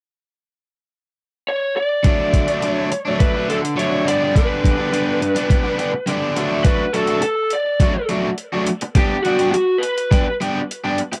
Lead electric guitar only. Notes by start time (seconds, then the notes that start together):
1.49 C#5
1.77 D5
2.73 C#5
3.19 B4
3.49 A4
3.77 C#5
4.08 D5
4.37 B4
6.64 B4
6.93 A4
7.21 A4
7.53 D5
8.96 G4
9.23 F#4
9.52 F#4
9.78 B4